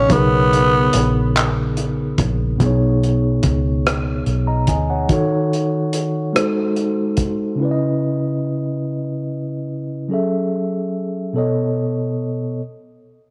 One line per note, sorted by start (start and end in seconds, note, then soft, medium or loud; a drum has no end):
0.00 0.14 C#4 medium
0.06 2.54 C#3 medium
0.06 2.55 B3 medium
0.06 kick loud
0.06 closed hi-hat medium
0.11 0.90 B1 loud
0.11 1.36 B3 medium
0.11 2.56 D#4 medium
0.11 2.58 G#4 medium
0.16 2.59 A#4 medium
0.53 closed hi-hat medium
0.93 2.15 A#1 medium
0.93 closed hi-hat medium
1.37 clap loud
1.37 closed hi-hat medium
1.77 closed hi-hat soft
2.18 2.56 A#1 medium
2.18 kick medium
2.18 closed hi-hat medium
2.56 5.04 B2 medium
2.56 5.05 B3 medium
2.60 3.40 B1 loud
2.60 2.67 D4 soft
2.60 5.07 G#4 medium
2.60 kick loud
2.60 closed hi-hat medium
2.66 5.08 D#4 medium
2.66 3.85 C#5 medium
3.03 closed hi-hat soft
3.43 4.23 C#2 medium
3.43 kick medium
3.43 closed hi-hat medium
3.87 cross-stick loud
3.87 closed hi-hat medium
4.26 4.68 B1 medium
4.26 closed hi-hat soft
4.47 4.67 D#5 soft
4.47 4.67 A#5 medium
4.67 5.06 D2 medium
4.67 4.88 D#5 medium
4.67 4.88 G#5 medium
4.67 kick medium
4.67 closed hi-hat medium
4.90 5.12 C#5 soft
4.90 5.29 F#5 medium
5.08 6.34 D#3 medium
5.08 6.33 D#4 medium
5.08 6.34 F#4 medium
5.08 kick loud
5.08 closed hi-hat medium
5.12 6.35 A4 medium
5.12 6.36 C#5 medium
5.53 closed hi-hat soft
5.93 closed hi-hat medium
6.33 7.59 G#3 medium
6.33 7.60 D#4 medium
6.33 7.60 F#4 medium
6.33 7.61 A4 medium
6.33 cross-stick loud
6.33 closed hi-hat medium
6.38 7.61 C5 medium
6.76 closed hi-hat soft
7.17 kick medium
7.17 closed hi-hat medium
7.55 10.04 C#3 medium
7.55 10.05 C#4 medium
7.60 10.06 E4 medium
7.60 10.07 B4 medium
7.65 7.69 D5 medium
7.71 10.11 D#5 medium
10.09 11.34 F#3 medium
10.09 11.35 C#4 medium
10.09 11.36 G#4 medium
10.09 11.35 A4 medium
10.14 11.37 E5 medium
11.33 12.59 B2 medium
11.33 12.60 B3 medium
11.33 12.60 A4 medium
11.33 12.61 C#5 medium
11.38 12.62 D#5 medium